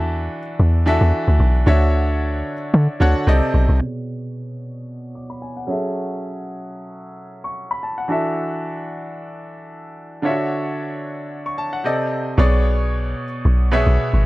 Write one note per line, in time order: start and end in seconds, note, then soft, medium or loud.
0.00 0.29 E2 loud
0.00 0.38 E3 medium
0.00 0.39 D4 medium
0.00 0.39 F#4 medium
0.00 0.39 A4 medium
0.00 0.39 E5 medium
0.60 0.99 E2 loud
0.86 1.51 E3 medium
0.86 1.52 D4 medium
0.86 1.52 F#4 medium
0.86 1.52 A4 medium
0.86 1.52 E5 loud
1.01 1.13 E2 medium
1.28 1.39 D2 medium
1.40 1.65 B1 loud
1.66 2.43 D2 loud
1.66 2.53 D3 medium
1.66 2.53 D4 medium
1.66 2.53 F#4 medium
1.66 2.53 C#5 medium
1.66 2.54 E5 loud
2.74 2.88 D3 loud
3.00 3.15 D2 medium
3.00 3.27 D3 medium
3.00 3.27 D4 medium
3.00 3.28 F#4 medium
3.00 3.28 C#5 medium
3.00 3.28 F#5 loud
3.27 3.41 C2 loud
3.27 3.71 C3 medium
3.27 3.71 C4 medium
3.27 3.71 A4 medium
3.27 3.72 D5 medium
3.27 3.72 D#5 loud
3.54 3.68 B1 medium
3.69 3.80 C2 medium
3.79 5.64 B2 medium
3.79 5.64 B3 medium
5.15 5.29 D6 medium
5.30 5.41 B5 medium
5.42 5.56 G#5 medium
5.57 5.82 F#5 medium
5.67 7.78 F#3 medium
5.67 7.78 C#4 medium
5.67 7.79 G#4 medium
5.67 7.79 A4 medium
5.67 7.80 E5 medium
7.44 7.69 C#6 medium
7.71 7.82 B5 medium
7.83 7.97 A5 medium
7.98 8.23 F#5 medium
8.08 10.19 E3 medium
8.08 10.19 D4 medium
8.08 10.20 F#4 medium
8.08 10.20 A4 medium
8.08 10.21 E5 medium
10.22 11.80 D3 medium
10.22 11.81 D4 medium
10.22 10.31 F4 medium
10.22 11.82 C#5 medium
10.22 11.82 E5 medium
10.31 11.85 F#4 medium
11.46 11.57 C#6 medium
11.58 11.72 A5 medium
11.73 11.98 F#5 medium
11.84 12.38 C3 medium
11.84 12.38 C4 medium
11.84 12.38 A4 medium
11.84 12.38 D5 medium
11.84 12.39 D#5 medium
12.37 13.14 B1 loud
12.37 13.24 B2 medium
12.37 13.24 B3 medium
12.37 13.24 G#4 medium
12.37 13.25 C#5 medium
12.37 13.25 D5 loud
13.45 13.85 B1 loud
13.71 14.25 B2 medium
13.71 14.25 B3 medium
13.71 14.24 G#4 medium
13.71 14.26 C#5 medium
13.71 14.26 E5 loud
13.87 13.98 B1 medium
14.14 14.25 G#1 medium